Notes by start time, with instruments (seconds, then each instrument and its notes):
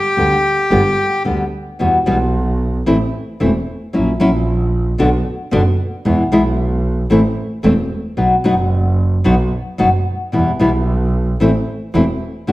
Already playing: bandoneon G4
0.17 double bass D2, nylon-string guitar D3 G3 B3 G4
0.71 double bass G1, nylon-string guitar D3 G3 B3 G4
1.24 double bass D2, nylon-string guitar D3 G3 B3 G4
1.79 double bass E2, nylon-string guitar B2 E3 G3 B3 F#4
2.06 double bass B1, nylon-string guitar B2 E3 G3 B3 F#4
2.86 double bass A1, nylon-string guitar E3 A3 C4 E4
3.40 double bass E1, nylon-string guitar E3 A3 C4 E4
3.93 double bass A#1, nylon-string guitar F#3 A#3 C#4 E4
4.20 double bass A#1, nylon-string guitar F#3 A#3 C#4 E4
4.98 double bass B1, nylon-string guitar B2 D3 B3 D4 F#4
5.51 double bass F#1, nylon-string guitar B2 D3 B3 D4 F#4
6.05 double bass E2, nylon-string guitar B2 E3 G#3 B3 E4
6.32 double bass B1, nylon-string guitar B2 E3 G#3 B3 E4
7.10 double bass A1, nylon-string guitar E3 A3 C4 E4
7.63 double bass E1, nylon-string guitar E3 A3 C4 E4
8.17 double bass B1, nylon-string guitar B2 F#3 B3 D#4 F#4
8.44 double bass F#1, nylon-string guitar B2 F#3 B3 D#4 F#4
9.24 double bass B1, nylon-string guitar B2 F#3 B3 D#4 F#4
9.78 double bass F#1, nylon-string guitar B2 F#3 B3 D#4 F#4
10.32 double bass E2, nylon-string guitar B2 E3 G3 B3 E4
10.59 double bass B1, nylon-string guitar B2 E3 G3 B3 E4
11.40 double bass A1, nylon-string guitar E3 A3 C4 E4
11.94 double bass E1, nylon-string guitar E3 A3 C4 E4
12.47 double bass D2, nylon-string guitar D3 A3 D4 F#4